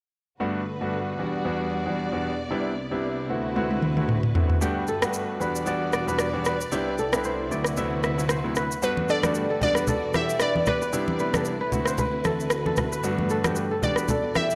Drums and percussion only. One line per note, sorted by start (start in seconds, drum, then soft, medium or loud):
3.56 high tom medium
3.71 high tom medium
3.82 mid tom medium
3.97 mid tom medium
4.09 mid tom medium
4.23 mid tom medium
4.35 floor tom loud
4.50 floor tom medium
4.62 shaker medium
4.88 shaker soft
5.02 cross-stick loud
5.02 shaker medium
5.13 shaker medium
5.41 shaker soft
5.56 shaker medium
5.66 shaker medium
5.93 cross-stick medium
5.93 shaker soft
6.08 shaker medium
6.19 cross-stick loud
6.19 shaker medium
6.45 cross-stick medium
6.45 shaker medium
6.61 shaker medium
6.72 shaker medium
6.98 shaker soft
7.13 cross-stick loud
7.13 shaker medium
7.24 shaker medium
7.52 shaker soft
7.64 cross-stick medium
7.64 shaker medium
7.77 shaker medium
8.03 cross-stick medium
8.03 shaker soft
8.19 shaker medium
8.29 cross-stick loud
8.29 shaker medium
8.55 cross-stick medium
8.55 shaker medium
8.71 shaker medium
8.83 shaker medium
8.97 high conga medium
9.09 shaker soft
9.23 cross-stick loud
9.23 high conga medium
9.23 shaker medium
9.35 shaker medium
9.62 low conga medium
9.62 shaker soft
9.75 cross-stick medium
9.75 shaker medium
9.87 low conga medium
9.87 shaker medium
10.14 cross-stick medium
10.14 high conga medium
10.14 shaker soft
10.29 shaker medium
10.40 cross-stick loud
10.40 shaker medium
10.55 high conga medium
10.66 cross-stick medium
10.66 low conga medium
10.66 shaker medium
10.82 shaker medium
10.93 shaker medium
11.08 high conga medium
11.19 shaker soft
11.34 cross-stick loud
11.34 high conga medium
11.34 shaker medium
11.45 shaker medium
11.72 low conga medium
11.72 shaker soft
11.85 cross-stick medium
11.85 shaker medium
11.98 low conga medium
11.98 shaker medium
12.24 cross-stick medium
12.24 high conga medium
12.24 shaker soft
12.40 shaker medium
12.50 cross-stick loud
12.50 shaker medium
12.66 high conga medium
12.77 cross-stick medium
12.77 low conga medium
12.77 shaker medium
12.92 shaker medium
13.04 shaker medium
13.18 high conga medium
13.30 shaker soft
13.44 cross-stick loud
13.44 high conga medium
13.44 shaker medium
13.56 shaker medium
13.83 low conga medium
13.83 shaker soft
13.96 cross-stick medium
13.96 shaker medium
14.08 low conga medium
14.08 shaker medium
14.35 cross-stick medium
14.35 high conga medium
14.35 shaker soft
14.51 shaker medium